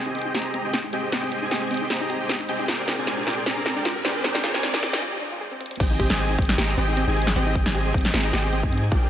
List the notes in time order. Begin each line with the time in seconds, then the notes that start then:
Already playing: G#3 C4 D#4 G4 G#4 C5 D#5 G#5, riser
0.06 D#4
0.15 C4 G4 G#4 D#5 G5, closed hi-hat
0.19 closed hi-hat
0.22 D#4, closed hi-hat
0.34 C4 G4 G#4 D#5 A#5, snare, closed hi-hat
0.45 G#4
0.54 C4, closed hi-hat
0.64 C4 D#4 G4 G#4 D#5 G5
0.73 C4, snare, closed hi-hat
0.84 D#4
0.93 C4 G4 G#4 D#5 G5, closed hi-hat
1.03 G#4
1.12 C4 G4 G#4 D#5 G5, snare, closed hi-hat
1.23 D#4
1.32 C4, closed hi-hat
1.42 C4 D#4 G4 G#4 D#5 G#5
1.51 G4, snare, closed hi-hat
1.62 G#4
1.71 C4 G4 G#4 D#5 G5, closed hi-hat
1.74 closed hi-hat
1.77 closed hi-hat
1.81 D#4
1.90 C4 G4 G#4 D#5 A#5, snare, closed hi-hat
2.01 D#4
2.10 G4, closed hi-hat
2.20 C4 G4 G#4 D#5 G5
2.29 C4, snare, closed hi-hat
2.40 D#4
2.49 C4 G4 G#4 D#5 G5, closed hi-hat
2.59 D#4
2.68 A#2 G#3 C4 D4 F4 G4 G#4 A#4 D5 G5, snare, closed hi-hat
2.79 G4
2.87 C4, snare, closed hi-hat
2.98 C4 D4 G#4 A#4 D5 G#5
3.07 C4, snare, closed hi-hat
3.18 D4
3.27 C4 F4 G#4 A#4 D5 G5, snare, closed hi-hat
3.30 closed hi-hat
3.33 G4, closed hi-hat
3.46 C4 G#4 A#4 D5 A#5, snare, closed hi-hat
3.57 D4
3.66 C4, snare, closed hi-hat
3.76 C4 D4 G#4 A#4 D5 G5
3.85 F4, snare, closed hi-hat
3.95 G4
4.05 C4 G#4 A#4 D5 G5, snare, closed hi-hat
4.15 D4
4.24 C4 G#4 A#4 D5 G5, snare, closed hi-hat
4.35 D4, snare
4.43 F4, snare, closed hi-hat
4.54 C4 G4 G#4 A#4 D5 G#5, snare
4.63 C4, snare, closed hi-hat
4.74 D4, snare
4.83 C4 G#4 A#4 D5 G5, snare, closed hi-hat
4.86 closed hi-hat
4.89 D4, closed hi-hat
4.93 snare
5.02 F4
5.12 G4
5.21 D4
5.32 F4
5.41 G#4
5.51 C4
5.60 C4, closed hi-hat
5.66 closed hi-hat
5.71 C4, closed hi-hat
5.76 closed hi-hat
5.80 G#1 C4 G4 G#4 D#5 G5, kick, closed hi-hat, crash
5.90 D#4
5.99 G4, kick, closed hi-hat
6.10 G#1 C4 G4 G#4 D#5 G#5, snare
6.19 C4, closed hi-hat
6.30 D#4
6.38 G#1 C4 G4 G#4 D#5 G5, kick, closed hi-hat
6.42 closed hi-hat
6.45 D#4, closed hi-hat
6.49 snare
6.58 G#1 C4 G4 G#4 D#5 A#5, snare, closed hi-hat
6.68 G#4
6.77 G#1 C4 G4 G#4 D#5 G5, closed hi-hat
6.88 D#4
6.97 C4, closed hi-hat
7.07 G#1 C4 D#4 G4 G#4 D#5 G#5
7.16 G4, closed hi-hat
7.22 closed hi-hat
7.27 G#4, snare
7.36 G#1 C4 G4 G#4 D#5 G5, closed hi-hat
7.46 D#4
7.55 C4, kick, closed hi-hat
7.66 G#1 C4 D#4 G4 G#4 D#5 G#5, snare
7.75 G4, closed hi-hat
7.85 G#4
7.94 C4 G4 G5, kick, closed hi-hat
7.98 closed hi-hat
8.01 closed hi-hat
8.05 D#4, snare
8.14 G#1 C4 G4 G#4 D#5 A#5, snare, closed hi-hat
8.24 D#4
8.33 G#1 C4 G4 G#4 D#5 G5, snare, closed hi-hat
8.44 G#4
8.53 C4, closed hi-hat
8.63 G#2 C4 D#4 G4 G#4 D#5 G#5, kick
8.72 C4, closed hi-hat
8.78 closed hi-hat
8.83 D#4
8.92 A#1 C4 F4 G#4 A#4 D5 G5, kick, closed hi-hat
9.02 G4